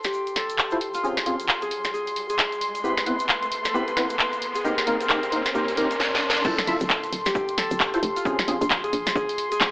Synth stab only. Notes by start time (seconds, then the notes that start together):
0.72 E4 F4 A4 C5
1.03 C4 C#4 F4 G#4
1.26 C4 C#4 F4 G#4
2.84 B3 C4 E4 G4
3.06 B3 C4 E4 B4
3.74 B3 C4 E4 G4
3.97 B3 C4 E4 B4
4.64 A#3 C4 D#4 G4
4.87 A#3 C4 D#4 A#4
5.09 A#3 C4 D#4 G4
5.32 A#3 C4 D#4 A#4
5.55 A#3 C4 D#4 G4
5.77 A#3 C4 D#4 G4
6.45 E4 F4 A4 C5
6.67 E4 F4 A4 E5
7.94 E4 F4 A4 C5
8.25 C4 C#4 F4 G#4
8.48 C4 C#4 F4 G#4